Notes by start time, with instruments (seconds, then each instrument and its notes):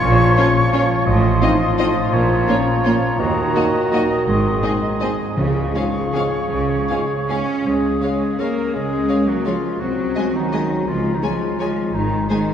Already playing: bassoon F3, clarinet F4, oboe C#5, flute C#6
0.02 double bass section A#1, cello section A#2
0.37 trombone section A#2 F3, french horn section C#4 F4, viola section C#4, violin section F4 C#5
0.72 trombone section A#2 F3, viola section C#4, french horn section C#4 F4, violin section F4 C#5
1.07 double bass section A1, cello section A2, bassoon F3, clarinet F4, oboe D#5, flute C6
1.42 trombone section A2 F3, viola section C4, french horn section C4 D#4, violin section F4 D#5
1.78 trombone section A2 F3, french horn section C4 D#4, viola section C4, violin section F4 D#5
2.13 double bass section A#1, cello section A#2, oboe C#5, flute A#5
2.48 trombone section A#2 F3, viola section A#3, french horn section A#3 C#4, violin section F4 C#5
2.85 trombone section A#2 F3, french horn section A#3 C#4, viola section A#3, violin section F4 C#5
3.20 double bass section D#2, cello section D#2, bassoon D#3, clarinet F#4, oboe D#5
3.54 trombone section A#2 F#3, french horn section A#3 D#4, viola section A#3, violin section F#4 D#5
3.90 trombone section A#2 F#3, viola section A#3, french horn section A#3 D#4, violin section F#4 D#5
4.27 double bass section G#1, timpani G#2, cello section G#2, clarinet G#4, flute C6
4.62 trombone section G#2 G#3, viola section C4, french horn section C4 D#4, violin section G#4 D#5
5.00 trombone section G#2 G#3, french horn section C4 D#4, viola section C4, violin section G#4 D#5
5.37 double bass section C#2, timpani C#3, cello section C#3, bassoon F3, clarinet G#4, flute C#6
5.75 trombone section G#2 G#3, viola section C#4, french horn section C#4 F4, violin section G#4 F5
6.14 trombone section G#2 G#3, french horn section C#4 F4, viola section C#4, violin section G#4 F5, oboe C#5
6.52 double bass section C#2, cello section C#3
6.90 trombone section G#2 G#3, viola section C#4, french horn section C#4 F4, violin section G#4 F5
7.29 trombone section G#2 G#3, french horn section C#4 F4, cello section C#4, viola section C#4, violin section G#4 F5, clarinet C#5
7.66 double bass section C#2, cello section G#3, french horn section C#4, clarinet G#4
8.01 viola section G#3, cello section G#3, french horn section C#4, clarinet G#4, violin section C#5 F5
8.38 viola section G#3, cello section A#3, french horn section C#4, clarinet A#4, violin section C#5 F5
8.72 double bass section C#2, cello section G#3, french horn section C#4, clarinet G#4
9.09 viola section G#3, violin section C#5 F5
9.27 cello section F#3, french horn section A#3, clarinet F#4
9.45 cello section F3, french horn section G#3, viola section G#3, clarinet F4, violin section C#5 F5
9.80 double bass section C2, cello section F#3, french horn section C4, clarinet F#4
10.16 viola section G#3, violin section D#5 G#5
10.35 cello section D#3, french horn section F#3, clarinet D#4
10.53 viola section G#3, violin section D#5 G#5
10.87 double bass section C#2, cello section F3, french horn section G#3, clarinet F4
11.13 cello section D#3, french horn section F#3, clarinet D#4
11.23 cello section F3, french horn section G#3, viola section G#3, clarinet F4, violin section C#5 G#5
11.59 cello section F3, viola section G#3, french horn section G#3, clarinet F4, violin section C#5 G#5
11.94 double bass section G#1, cello section D#3, french horn section G#3, clarinet D#4
12.30 cello section D#3, french horn section G#3, viola section G#3, clarinet D#4, violin section C5 G#5